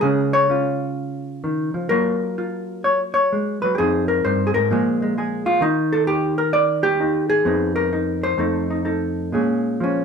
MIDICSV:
0, 0, Header, 1, 2, 480
1, 0, Start_track
1, 0, Tempo, 471328
1, 15, Time_signature, 4, 2, 24, 8
1, 3855, Tempo, 458365
1, 8175, Tempo, 476569
1, 10326, End_track
2, 0, Start_track
2, 0, Title_t, "Hollow-body jazz guitar"
2, 0, Program_c, 0, 26
2, 10, Note_on_c, 0, 68, 100
2, 24, Note_on_c, 0, 49, 76
2, 38, Note_on_c, 0, 56, 44
2, 42, Note_on_c, 0, 61, 50
2, 339, Note_on_c, 0, 73, 94
2, 492, Note_off_c, 0, 68, 0
2, 502, Note_off_c, 0, 61, 0
2, 506, Note_on_c, 0, 61, 47
2, 516, Note_on_c, 0, 65, 48
2, 1460, Note_off_c, 0, 56, 0
2, 1464, Note_on_c, 0, 51, 56
2, 1769, Note_off_c, 0, 51, 0
2, 1773, Note_on_c, 0, 53, 56
2, 1923, Note_off_c, 0, 65, 0
2, 1924, Note_off_c, 0, 49, 0
2, 1925, Note_off_c, 0, 61, 0
2, 1927, Note_on_c, 0, 70, 104
2, 1939, Note_off_c, 0, 53, 0
2, 1942, Note_on_c, 0, 54, 63
2, 1944, Note_off_c, 0, 73, 0
2, 1947, Note_on_c, 0, 58, 40
2, 1951, Note_on_c, 0, 65, 47
2, 2420, Note_off_c, 0, 65, 0
2, 2424, Note_on_c, 0, 65, 45
2, 2895, Note_on_c, 0, 73, 81
2, 3058, Note_off_c, 0, 73, 0
2, 3196, Note_on_c, 0, 73, 95
2, 3209, Note_off_c, 0, 70, 0
2, 3382, Note_off_c, 0, 58, 0
2, 3386, Note_on_c, 0, 56, 53
2, 3682, Note_off_c, 0, 73, 0
2, 3686, Note_on_c, 0, 71, 92
2, 3691, Note_off_c, 0, 54, 0
2, 3697, Note_off_c, 0, 56, 0
2, 3703, Note_on_c, 0, 54, 56
2, 3811, Note_off_c, 0, 71, 0
2, 3818, Note_on_c, 0, 67, 65
2, 3838, Note_off_c, 0, 65, 0
2, 3849, Note_off_c, 0, 67, 0
2, 3853, Note_on_c, 0, 68, 95
2, 3858, Note_on_c, 0, 41, 68
2, 3859, Note_off_c, 0, 54, 0
2, 3864, Note_on_c, 0, 60, 46
2, 3873, Note_on_c, 0, 63, 49
2, 4161, Note_off_c, 0, 68, 0
2, 4165, Note_on_c, 0, 70, 82
2, 4332, Note_off_c, 0, 41, 0
2, 4337, Note_on_c, 0, 43, 65
2, 4337, Note_on_c, 0, 72, 87
2, 4557, Note_off_c, 0, 70, 0
2, 4570, Note_on_c, 0, 68, 75
2, 4644, Note_off_c, 0, 68, 0
2, 4648, Note_on_c, 0, 70, 92
2, 4654, Note_off_c, 0, 43, 0
2, 4665, Note_on_c, 0, 44, 62
2, 4803, Note_off_c, 0, 60, 0
2, 4808, Note_off_c, 0, 63, 0
2, 4816, Note_on_c, 0, 46, 72
2, 4818, Note_off_c, 0, 72, 0
2, 4823, Note_on_c, 0, 53, 53
2, 4824, Note_off_c, 0, 44, 0
2, 4837, Note_on_c, 0, 56, 49
2, 4838, Note_on_c, 0, 68, 51
2, 5138, Note_off_c, 0, 56, 0
2, 5151, Note_on_c, 0, 56, 47
2, 5299, Note_off_c, 0, 56, 0
2, 5302, Note_off_c, 0, 68, 0
2, 5312, Note_on_c, 0, 56, 48
2, 5318, Note_on_c, 0, 68, 48
2, 5606, Note_off_c, 0, 68, 0
2, 5610, Note_on_c, 0, 65, 92
2, 5754, Note_off_c, 0, 53, 0
2, 5762, Note_on_c, 0, 51, 72
2, 5768, Note_off_c, 0, 70, 0
2, 5770, Note_off_c, 0, 46, 0
2, 5773, Note_off_c, 0, 56, 0
2, 5773, Note_off_c, 0, 65, 0
2, 5777, Note_on_c, 0, 63, 91
2, 6096, Note_on_c, 0, 69, 92
2, 6246, Note_off_c, 0, 69, 0
2, 6250, Note_on_c, 0, 67, 97
2, 6568, Note_off_c, 0, 67, 0
2, 6572, Note_on_c, 0, 70, 96
2, 6574, Note_off_c, 0, 63, 0
2, 6730, Note_on_c, 0, 74, 107
2, 7039, Note_off_c, 0, 70, 0
2, 7043, Note_on_c, 0, 67, 105
2, 7224, Note_on_c, 0, 63, 58
2, 7525, Note_off_c, 0, 67, 0
2, 7525, Note_off_c, 0, 74, 0
2, 7531, Note_on_c, 0, 68, 106
2, 7678, Note_off_c, 0, 63, 0
2, 7688, Note_off_c, 0, 51, 0
2, 7692, Note_on_c, 0, 41, 74
2, 7698, Note_on_c, 0, 59, 47
2, 7712, Note_on_c, 0, 63, 48
2, 8009, Note_off_c, 0, 68, 0
2, 8013, Note_on_c, 0, 70, 93
2, 8179, Note_off_c, 0, 63, 0
2, 8191, Note_on_c, 0, 63, 50
2, 8501, Note_on_c, 0, 72, 90
2, 8630, Note_off_c, 0, 59, 0
2, 8635, Note_off_c, 0, 41, 0
2, 8635, Note_off_c, 0, 63, 0
2, 8646, Note_on_c, 0, 41, 71
2, 8649, Note_off_c, 0, 70, 0
2, 8652, Note_on_c, 0, 57, 47
2, 8659, Note_on_c, 0, 63, 46
2, 8666, Note_on_c, 0, 69, 47
2, 8962, Note_off_c, 0, 63, 0
2, 8974, Note_on_c, 0, 63, 42
2, 9108, Note_off_c, 0, 63, 0
2, 9111, Note_off_c, 0, 69, 0
2, 9120, Note_on_c, 0, 63, 43
2, 9124, Note_on_c, 0, 69, 44
2, 9592, Note_off_c, 0, 63, 0
2, 9594, Note_off_c, 0, 69, 0
2, 9598, Note_off_c, 0, 57, 0
2, 9598, Note_on_c, 0, 46, 60
2, 9605, Note_on_c, 0, 56, 43
2, 9613, Note_on_c, 0, 61, 42
2, 9617, Note_off_c, 0, 41, 0
2, 9618, Note_off_c, 0, 72, 0
2, 9622, Note_on_c, 0, 68, 44
2, 10082, Note_on_c, 0, 53, 62
2, 10096, Note_off_c, 0, 61, 0
2, 10114, Note_on_c, 0, 61, 67
2, 10326, Note_off_c, 0, 46, 0
2, 10326, Note_off_c, 0, 53, 0
2, 10326, Note_off_c, 0, 56, 0
2, 10326, Note_off_c, 0, 61, 0
2, 10326, Note_off_c, 0, 68, 0
2, 10326, End_track
0, 0, End_of_file